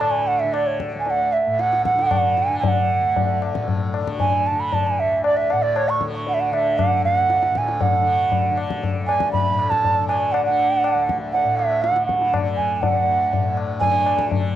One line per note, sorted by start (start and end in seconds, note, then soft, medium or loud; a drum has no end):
0.00 0.95 D2 medium
0.00 1.46 A2 medium
0.00 0.44 D3 medium
0.00 0.13 A5 loud
0.00 tabla na medium
0.11 0.29 G#5 medium
0.27 0.41 F#5 medium
0.40 0.55 E5 medium
0.44 1.98 D3 medium
0.53 0.68 D5 medium
0.53 tabla na medium
0.66 0.79 C#5 medium
0.80 tabla ke medium
0.95 2.98 D2 medium
1.00 1.06 G#5 medium
1.06 1.11 G#5 medium
1.06 tabla tin medium
1.10 1.34 F#5 loud
1.33 1.61 E5 medium
1.46 3.51 A2 medium
1.59 1.84 F#5 loud
1.59 tabla te medium
1.73 tabla te medium
1.85 2.40 F#5 loud
1.85 tabla ke medium
1.98 2.48 D3 medium
1.98 tabla te medium
2.11 tabla na medium
2.11 tabla ge medium
2.37 2.59 G#5 medium
2.37 tabla te medium
2.48 4.02 D3 medium
2.59 2.64 G#5 medium
2.63 2.69 G#5 medium
2.63 tabla tin loud
2.63 tabla ge loud
2.68 3.43 F#5 loud
2.99 5.02 D2 medium
3.16 tabla tin medium
3.16 tabla ge medium
3.42 tabla na medium
3.51 5.52 A2 medium
3.55 tabla ke medium
3.68 tabla tin medium
3.68 tabla ge medium
3.94 tabla na medium
4.02 4.52 D3 medium
4.08 tabla ke medium
4.20 4.48 G#5 loud
4.20 tabla tin medium
4.20 tabla ge medium
4.47 4.62 A5 medium
4.52 6.03 D3 medium
4.60 4.75 B5 medium
4.73 4.88 A5 medium
4.73 tabla tin medium
4.73 tabla ge medium
4.87 5.01 G#5 medium
5.00 7.01 D2 medium
5.00 5.24 E5 medium
5.24 5.38 D5 medium
5.24 tabla na medium
5.37 5.53 E5 medium
5.50 7.51 A2 medium
5.50 5.64 F#5 loud
5.50 tabla na medium
5.62 5.78 D5 medium
5.76 5.90 C#5 loud
5.76 tabla na medium
5.89 6.02 C#6 medium
6.01 6.52 D3 medium
6.01 tabla ke medium
6.27 6.36 F#5 medium
6.27 tabla tin medium
6.34 6.42 E5 medium
6.40 6.55 F#5 medium
6.52 8.01 D3 medium
6.52 6.79 E5 medium
6.52 tabla na medium
6.78 7.04 F#5 loud
6.78 tabla na medium
6.78 tabla ge medium
7.01 8.99 D2 medium
7.01 7.59 F#5 loud
7.01 tabla ge medium
7.30 tabla te medium
7.43 tabla te medium
7.51 9.49 A2 medium
7.55 7.83 G#5 medium
7.55 tabla ke medium
7.68 tabla te medium
7.81 8.58 F#5 medium
7.81 tabla tin loud
7.81 tabla ge loud
8.01 8.50 D3 medium
8.32 tabla tin medium
8.32 tabla ge medium
8.50 9.99 D3 medium
8.58 tabla na medium
8.71 tabla ke medium
8.84 tabla tin medium
8.84 tabla ge medium
8.99 10.95 D2 medium
9.07 9.31 G#5 loud
9.07 tabla na medium
9.20 tabla ke medium
9.33 9.71 B5 loud
9.33 tabla tin medium
9.33 tabla ge medium
9.50 11.44 A2 medium
9.59 tabla na medium
9.70 10.07 A5 loud
9.70 tabla ke medium
9.84 tabla tin medium
9.84 tabla ge medium
9.99 10.47 D3 medium
10.08 10.33 G#5 medium
10.08 tabla na medium
10.32 10.44 F#5 loud
10.32 tabla na medium
10.45 11.92 D3 medium
10.45 11.17 F#5 loud
10.59 tabla na medium
10.84 tabla na medium
10.95 12.88 D2 medium
11.09 tabla ke medium
11.32 11.58 F#5 loud
11.32 tabla tin medium
11.44 13.35 A2 medium
11.57 11.83 E5 medium
11.57 tabla na medium
11.82 12.05 F#5 loud
11.82 tabla te medium
11.92 12.39 D3 medium
11.96 tabla te medium
12.06 12.34 F#5 medium
12.06 tabla ke medium
12.21 tabla te medium
12.34 tabla na medium
12.34 tabla ge medium
12.39 13.83 D3 medium
12.57 12.76 G#5 medium
12.57 tabla ge medium
12.76 12.83 G#5 medium
12.82 13.56 F#5 medium
12.82 tabla tin loud
12.82 tabla ge loud
12.88 14.56 D2 medium
13.33 14.56 A2 medium
13.33 tabla tin medium
13.33 tabla ge medium
13.57 tabla na medium
13.80 14.31 D3 medium
13.80 14.26 G#5 loud
13.80 tabla tin medium
13.80 tabla ge medium
14.06 tabla na medium
14.19 tabla ke medium
14.31 14.56 D3 medium
14.31 tabla tin medium
14.31 tabla ge medium